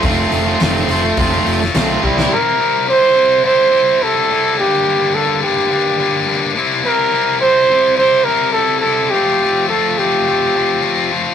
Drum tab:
HH |o-o-o-o-o-o-o---|----------------|----------------|----------------|
SD |----o------oo--o|----------------|----------------|----------------|
BD |o-------o-----o-|----------------|----------------|----------------|

HH |----------------|
SD |----------------|
BD |----------------|